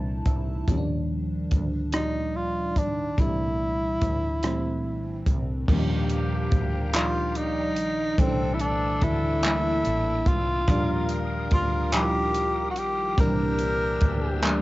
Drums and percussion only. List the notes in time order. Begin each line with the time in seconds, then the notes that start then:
0.26 kick, closed hi-hat
0.68 kick, closed hi-hat
1.51 kick, closed hi-hat
1.92 cross-stick, closed hi-hat
2.76 kick, closed hi-hat
3.18 kick, closed hi-hat
4.01 kick, closed hi-hat
4.43 cross-stick, closed hi-hat
5.26 kick, closed hi-hat
5.68 kick, crash
6.09 closed hi-hat
6.52 kick, closed hi-hat
6.93 clap, closed hi-hat
7.35 closed hi-hat
7.76 closed hi-hat
8.18 kick, closed hi-hat
8.59 closed hi-hat
9.01 kick, closed hi-hat
9.43 clap, closed hi-hat
9.85 closed hi-hat
10.26 kick, closed hi-hat
10.68 kick, closed hi-hat
11.09 closed hi-hat
11.51 kick, closed hi-hat
11.92 clap, closed hi-hat
12.34 closed hi-hat
12.76 closed hi-hat
13.18 kick, closed hi-hat
13.59 closed hi-hat
14.01 kick, closed hi-hat
14.43 clap, closed hi-hat